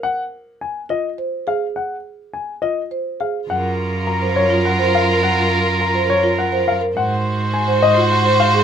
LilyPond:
<<
  \new Staff \with { instrumentName = "Grand piano" } { \time 3/4 \key ges \lydian \tempo 4 = 104 ges''16 r8. aes''16 r16 ees''16 r8. f''16 r16 | ges''16 r8. aes''16 r16 ees''16 r8. f''16 r16 | ges''16 r8. bes''16 r16 des''16 r16 ges''16 r16 f''16 r16 | ges''16 r8. bes''16 r16 des''16 r16 ges''16 r16 f''16 r16 |
ges''16 r8. aes''16 r16 ees''16 r16 ges''16 r16 f''16 r16 | }
  \new Staff \with { instrumentName = "Oboe" } { \time 3/4 \key ges \lydian r2. | r2. | bes'2.~ | bes'2~ bes'8. r16 |
c''2. | }
  \new Staff \with { instrumentName = "Marimba" } { \time 3/4 \key ges \lydian r4. f'16 r16 c''16 r16 aes'16 r16 | r4. f'16 r16 c''16 r16 aes'16 r16 | r4 r16 c''16 r16 f'16 r16 c''16 r16 bes'16 | r4 r16 c''16 r16 f'16 r16 c''16 r16 bes'16 |
r4 r16 c''16 r16 f'16 r16 c''16 r16 aes'16 | }
  \new Staff \with { instrumentName = "Violin section" } { \time 3/4 \key ges \lydian r2. | r2. | <f' bes'>2.~ | <f' bes'>2~ <f' bes'>8. r16 |
<ges' c''>2. | }
  \new Staff \with { instrumentName = "Cello" } { \clef bass \time 3/4 \key ges \lydian r2. | r2. | ges,2.~ | ges,2. |
aes,2. | }
>>